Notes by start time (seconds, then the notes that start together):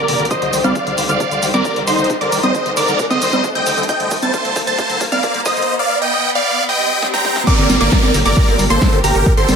Already playing: D3 A#3 G4 A#4 D5 D6, riser
0.08 F1 D3, open hi-hat
0.20 G1 D3, closed hi-hat
0.25 closed hi-hat
0.31 C3 D3 D#3 C5 D#5 D#6, kick, closed hi-hat, shaker
0.42 C2 D3, closed hi-hat
0.53 C2 D#3, open hi-hat, shaker
0.64 C2 G3 D5 F5 F6, closed hi-hat, high conga, shaker
0.75 D#3, kick, closed hi-hat, shaker
0.87 C2 D3, closed hi-hat
0.98 C2 D3, open hi-hat, shaker
1.09 C2 D3 D5 F5 F6, closed hi-hat, shaker
1.20 C3, kick, closed hi-hat, shaker
1.31 C2 D3, closed hi-hat, shaker
1.43 C2 D#3, open hi-hat, shaker
1.54 C2 G3 A#4 D5 D6, closed hi-hat, high conga, shaker
1.65 D#3, kick, closed hi-hat, shaker
1.76 C2 D3, closed hi-hat
1.87 C2 D3 D#4 C5 C6, open hi-hat, shaker
1.99 C2 D3, closed hi-hat, shaker
2.04 closed hi-hat
2.10 C3, kick, closed hi-hat, shaker
2.21 C2 D3 A#4 D5 D6, closed hi-hat
2.32 C2 D#3, open hi-hat, shaker
2.43 C2 G3 C5 D#5 D#6, closed hi-hat, high conga, shaker
2.55 D#3, kick, closed hi-hat, shaker
2.66 C2 D3, closed hi-hat
2.77 C2 D3 A#4 D5 D6, open hi-hat, shaker
2.88 C2 D3, closed hi-hat, shaker
2.99 C3, kick, closed hi-hat, shaker
3.10 C2 D3 C5 D#5 D#6, closed hi-hat, high conga, shaker
3.22 C2 D#3, open hi-hat, shaker
3.33 C2 G3, closed hi-hat, high conga, shaker
3.44 D#3, kick, closed hi-hat, shaker
3.55 C2 D3 D#5 G5 G6, closed hi-hat
3.66 C2 D3, open hi-hat, shaker
3.78 C2 D3, closed hi-hat, shaker
3.83 closed hi-hat
3.89 C3 D#5 G5 G6, kick, closed hi-hat, shaker
4.00 C2 D3, closed hi-hat
4.11 C2 D#3, kick, open hi-hat, shaker
4.22 C2 G3 C5 A5 A6, closed hi-hat, high conga, shaker
4.34 D#3, kick, closed hi-hat, shaker
4.45 C2 D3, closed hi-hat
4.56 C2 D3, kick, open hi-hat, shaker
4.67 C2 D3 C5 A5 A6, closed hi-hat, shaker
4.78 C3, kick, closed hi-hat, shaker
4.90 C2 D3, closed hi-hat, shaker
5.01 C2 D#3, kick, open hi-hat, shaker
5.12 C2 G3 D5 F5 F6, closed hi-hat, high conga, shaker
5.23 D#3, kick, closed hi-hat, shaker
5.34 C2 D3, closed hi-hat
5.45 C2 D3 C5 D#5 D#6, kick, open hi-hat, shaker
5.57 C2 D3, closed hi-hat, shaker
5.62 closed hi-hat
5.79 D5 F5
6.02 D#5 G5
6.35 D5 F5
6.58 swell
6.69 D#5 G5
7.02 snare
7.14 G5 A#5, snare
7.25 snare
7.36 snare
7.47 A#2 A#3 G4 A#4 D5 D6, kick, closed hi-hat, crash, downlifter, shaker
7.58 G1 D3, closed hi-hat, shaker
7.70 G1 G3, open hi-hat, high conga, shaker
7.81 G1 A#3 A#4 D5 D6, closed hi-hat, shaker
7.92 G3, kick, snare, closed hi-hat, shaker
8.03 G1 D3, closed hi-hat, high conga, shaker
8.14 G1 D3, open hi-hat, shaker
8.26 G1 D3 A#4 D5 D6, closed hi-hat, shaker
8.37 A#2, kick, closed hi-hat, shaker
8.48 G1 D3, closed hi-hat, shaker
8.59 G1 G3, open hi-hat, shaker
8.70 G1 A#3 A4 C5 C6, closed hi-hat, shaker
8.81 G3, kick, snare, closed hi-hat, shaker
8.93 G1 D3, closed hi-hat, shaker
9.04 G1 D3 G4 A#4 A#5, open hi-hat, shaker
9.15 G1 D3, closed hi-hat, shaker
9.26 A#2, kick, closed hi-hat, shaker
9.37 G1 D3 A4 C5 C6, closed hi-hat, shaker
9.49 G1 G3, open hi-hat, high conga, shaker